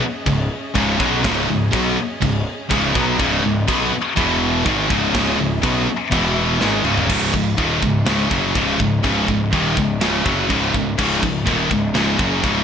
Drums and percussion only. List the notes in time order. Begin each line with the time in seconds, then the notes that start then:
0.26 kick, crash
0.75 kick, crash
1.00 kick
1.24 kick, snare, crash
1.73 kick, crash
2.22 kick, crash
2.71 kick, crash
2.95 kick
3.19 kick, crash
3.68 kick, crash
4.17 kick, crash
4.66 kick, crash
4.90 kick
5.15 kick, snare, crash
5.63 kick, crash
6.12 kick, crash
6.61 snare
6.85 mid tom
6.97 floor tom
7.09 kick, crash, china
7.34 kick
7.58 kick, china
7.83 kick
8.06 snare, china
8.31 kick
8.55 kick, china
8.80 kick
9.04 kick, china
9.28 kick
9.53 kick, china
9.77 kick
10.01 snare, china
10.26 kick
10.50 kick, china
10.74 kick
10.99 kick, china, crash
11.23 kick
11.47 kick, china
11.71 kick
11.95 snare, china
12.19 kick
12.43 kick, china